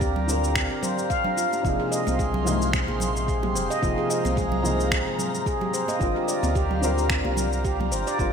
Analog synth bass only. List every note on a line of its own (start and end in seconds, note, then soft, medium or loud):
0.00 0.67 D2 medium
1.65 1.77 F1 medium
2.07 2.85 C2 medium
2.89 3.57 A#1 medium
3.55 3.68 F1 loud
3.83 3.96 F1 loud
4.25 5.03 C2 medium
6.01 6.14 G1 loud
6.43 7.21 D2 medium
7.25 7.93 C2 medium
7.92 8.05 G1 loud
8.19 8.32 G1 loud